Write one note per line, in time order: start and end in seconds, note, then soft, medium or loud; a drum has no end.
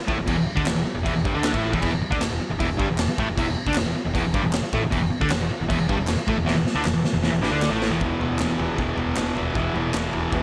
0.07 0.17 A1 loud
0.07 0.17 A2 medium
0.07 0.17 A3 loud
0.07 kick loud
0.18 0.27 E1 medium
0.18 0.25 E2 medium
0.27 0.37 E1 medium
0.27 0.36 E2 loud
0.27 0.36 E3 loud
0.27 kick loud
0.27 crash medium
0.37 0.47 E1 medium
0.37 0.45 E2 medium
0.47 muted distorted electric guitar stroke medium
0.47 muted picked electric bass stroke soft
0.56 0.66 D2 medium
0.56 0.65 D3 loud
0.56 0.65 D4 loud
0.56 kick loud
0.66 0.76 E1 medium
0.66 0.74 E2 medium
0.66 snare loud
0.66 clap loud
0.66 crash medium
0.75 0.85 E1 medium
0.75 0.84 E2 medium
0.85 muted distorted electric guitar stroke medium
0.95 1.04 E1 medium
0.95 1.02 E2 medium
1.03 1.14 E1 medium
1.03 1.13 E2 loud
1.03 1.14 E3 loud
1.03 kick medium
1.03 crash medium
1.15 1.24 E1 medium
1.15 1.24 E2 medium
1.24 1.34 G1 loud
1.24 1.33 G2 medium
1.24 1.34 G3 loud
1.24 kick loud
1.34 1.53 D2 medium
1.34 1.52 D3 medium
1.34 1.53 D4 loud
1.44 snare loud
1.44 clap loud
1.44 crash medium
1.53 1.72 A1 loud
1.53 1.72 A2 loud
1.53 1.72 A3 loud
1.53 kick loud
1.72 1.82 E1 medium
1.72 1.81 E2 medium
1.72 1.82 E3 loud
1.72 kick loud
1.82 1.92 E1 medium
1.82 1.91 E2 medium
1.82 1.92 E3 loud
1.82 kick loud
1.82 crash medium
1.92 2.01 E1 medium
1.92 2.00 E2 medium
2.02 muted distorted electric guitar stroke medium
2.02 muted picked electric bass stroke soft
2.10 2.21 D2 medium
2.10 2.20 D3 medium
2.10 2.21 D4 loud
2.10 kick loud
2.20 2.31 E1 medium
2.20 2.29 E2 medium
2.20 snare loud
2.20 clap medium
2.20 crash medium
2.31 2.41 E1 medium
2.31 2.39 E2 medium
2.40 muted distorted electric guitar stroke medium
2.50 2.59 E1 medium
2.50 2.58 E2 medium
2.59 2.69 E1 medium
2.59 2.67 E2 loud
2.59 2.69 E3 loud
2.59 kick loud
2.59 crash medium
2.69 2.79 E1 medium
2.69 2.77 E2 medium
2.77 2.88 G1 loud
2.77 2.87 G2 loud
2.77 2.88 G3 loud
2.77 kick loud
2.89 3.07 E1 medium
2.89 3.05 E2 medium
2.98 snare loud
2.98 clap medium
2.98 crash medium
3.08 muted distorted electric guitar stroke medium
3.18 3.27 A1 medium
3.18 3.27 A2 medium
3.18 3.28 A3 loud
3.18 kick loud
3.28 3.37 E1 medium
3.28 3.36 E2 medium
3.37 3.46 E1 medium
3.37 3.46 E2 loud
3.37 3.46 E3 loud
3.37 kick loud
3.37 crash medium
3.48 3.57 E1 medium
3.48 3.55 E2 medium
3.56 muted distorted electric guitar stroke medium
3.56 muted picked electric bass stroke soft
3.67 3.75 D2 medium
3.67 3.75 D3 loud
3.67 3.76 D4 loud
3.67 kick loud
3.74 3.85 E1 medium
3.74 3.84 E2 medium
3.74 snare loud
3.74 clap loud
3.74 crash medium
3.85 3.95 E1 medium
3.85 3.94 E2 medium
3.95 muted distorted electric guitar stroke medium
3.95 muted picked electric bass stroke soft
4.05 4.14 E1 medium
4.05 4.12 E2 medium
4.13 4.24 E1 medium
4.13 4.23 E2 medium
4.13 4.24 E3 loud
4.13 kick loud
4.13 crash medium
4.24 4.34 E1 medium
4.24 4.33 E2 medium
4.33 4.43 G1 loud
4.33 4.43 G2 medium
4.33 4.43 G3 loud
4.33 kick loud
4.43 4.62 E1 medium
4.43 4.59 E2 medium
4.53 snare loud
4.53 clap medium
4.53 crash medium
4.62 muted distorted electric guitar stroke medium
4.73 4.82 A1 loud
4.73 4.82 A2 medium
4.73 4.82 A3 loud
4.73 kick loud
4.82 4.91 E1 medium
4.82 4.89 E2 medium
4.90 5.01 E1 medium
4.90 5.00 E2 medium
4.90 5.01 E3 loud
4.90 kick loud
4.90 crash medium
5.01 5.10 E1 medium
5.01 5.09 E2 medium
5.10 muted distorted electric guitar stroke medium
5.21 5.29 D2 medium
5.21 5.30 D3 medium
5.21 5.30 D4 loud
5.21 kick loud
5.30 5.39 E1 medium
5.30 5.40 E2 medium
5.30 snare loud
5.30 clap medium
5.30 crash medium
5.41 5.50 E1 medium
5.41 5.50 E2 medium
5.51 muted picked electric bass stroke soft
5.51 muted distorted electric guitar stroke medium
5.60 5.69 E1 medium
5.60 5.67 E2 medium
5.69 5.79 E1 medium
5.69 5.78 E2 loud
5.69 5.79 E3 loud
5.69 kick loud
5.69 crash medium
5.80 5.88 E1 medium
5.80 5.88 E2 medium
5.89 5.98 G1 loud
5.89 5.98 G2 loud
5.89 5.98 G3 loud
5.89 kick loud
5.98 6.16 E1 medium
5.98 6.14 E2 medium
6.07 snare loud
6.07 clap medium
6.07 crash medium
6.17 muted distorted electric guitar stroke medium
6.27 6.35 A1 loud
6.27 6.36 A2 medium
6.27 6.37 A3 loud
6.27 kick loud
6.35 6.45 E1 medium
6.35 6.44 E2 medium
6.45 6.55 E1 loud
6.45 6.54 E2 loud
6.45 6.55 E3 medium
6.45 snare medium
6.56 6.65 E1 medium
6.56 6.64 E2 medium
6.65 muted distorted electric guitar stroke medium
6.65 muted picked electric bass stroke soft
6.65 snare medium
6.75 6.84 D2 medium
6.75 6.84 D3 medium
6.75 6.84 D4 loud
6.85 6.94 E1 medium
6.85 6.93 E2 medium
6.85 snare medium
6.85 clap medium
6.94 7.04 E1 medium
6.94 7.03 E2 medium
7.05 muted distorted electric guitar stroke medium
7.05 muted picked electric bass stroke soft
7.05 snare medium
7.13 7.22 E1 medium
7.13 7.21 E2 medium
7.23 7.32 E1 medium
7.23 7.31 E2 medium
7.23 7.33 E3 loud
7.23 snare medium
7.32 7.41 E1 medium
7.32 7.41 E2 medium
7.42 7.51 G1 medium
7.42 7.51 G2 loud
7.42 7.52 G3 loud
7.42 snare medium
7.51 7.69 D2 loud
7.51 7.71 D3 loud
7.51 7.71 D4 loud
7.62 snare loud
7.62 clap medium
7.70 7.89 A1 medium
7.70 7.90 A2 medium
7.70 7.91 A3 loud
7.82 snare medium
7.90 8.00 E1 medium
7.90 8.00 E2 medium
7.90 8.01 E3 loud
8.01 8.15 E1 medium
8.01 8.38 E2 medium
8.01 8.23 B2 medium
8.01 8.21 E3 loud
8.01 kick loud
8.01 floor tom medium
8.19 8.33 E1 medium
8.19 8.42 E3 medium
8.19 floor tom medium
8.24 8.39 B2 medium
8.38 8.52 E1 medium
8.38 8.77 E2 medium
8.38 8.61 B2 loud
8.38 snare loud
8.38 clap medium
8.38 floor tom medium
8.42 8.58 E3 loud
8.58 8.72 E1 medium
8.58 8.78 B2 medium
8.58 8.80 E3 medium
8.58 floor tom medium
8.77 8.92 E1 medium
8.77 9.00 E2 medium
8.77 8.98 B2 medium
8.77 8.96 E3 medium
8.77 kick loud
8.77 floor tom medium
8.96 9.10 E1 medium
8.96 9.18 B2 medium
8.96 9.20 E3 medium
8.96 floor tom medium
9.01 9.17 E2 medium
9.16 9.30 E1 medium
9.16 9.54 E2 medium
9.16 9.37 B2 medium
9.16 snare loud
9.16 clap medium
9.16 floor tom medium
9.21 9.34 E3 medium
9.35 9.49 E1 medium
9.35 9.55 B2 medium
9.35 9.57 E3 medium
9.35 floor tom medium
9.54 9.69 E1 medium
9.54 9.93 E2 medium
9.54 9.76 B2 medium
9.54 9.74 E3 loud
9.54 kick loud
9.54 floor tom medium
9.74 9.88 E1 medium
9.74 9.94 B2 medium
9.74 9.97 E3 medium
9.74 floor tom medium
9.93 10.07 E1 medium
9.93 10.31 E2 loud
9.93 10.15 B2 medium
9.93 10.12 E3 loud
9.93 snare loud
9.93 clap loud
9.93 floor tom medium
10.13 10.27 E1 medium
10.13 10.33 B2 medium
10.13 10.35 E3 medium
10.13 floor tom medium
10.32 10.43 E1 medium
10.32 10.43 E2 medium
10.32 10.43 B2 medium
10.32 10.43 E3 medium
10.32 kick loud
10.32 floor tom medium